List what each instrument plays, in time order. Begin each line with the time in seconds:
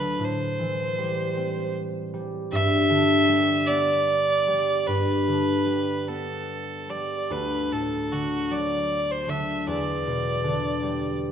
Already playing: harp D2 D3, fiddle B4
0.19 harp A2
0.25 fiddle C5
0.59 harp E3
0.98 harp G3
1.37 harp C4
2.14 harp G3
2.52 harp G2, fiddle E5
2.90 harp D3
3.28 harp G3
3.66 harp B3, fiddle D5
4.48 harp G3
4.87 harp G2, fiddle B4
5.28 harp D3
5.66 harp G3
6.08 harp B3, fiddle A4
6.89 harp G3, fiddle D5
7.30 harp D2, fiddle B4
7.72 harp A2, fiddle A4
8.12 harp D3, fiddle F#4
8.51 harp F#3, fiddle D5
9.11 fiddle C5
9.28 harp D3, fiddle E5
9.67 harp E2, fiddle D5
10.07 harp B2
10.44 harp D3
10.83 harp G3